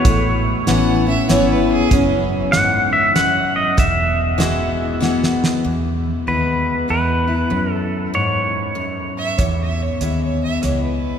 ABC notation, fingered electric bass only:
X:1
M:3/4
L:1/8
Q:"Swing" 1/4=96
K:E
V:1 name="Fingered electric bass" clef=bass
A,,,2 A,,,2 G,,,2 | F,,,6 | E,,,6 | E,,2 D,,2 E,,2 |
F,,6 | E,,2 D,,2 C,,2 |]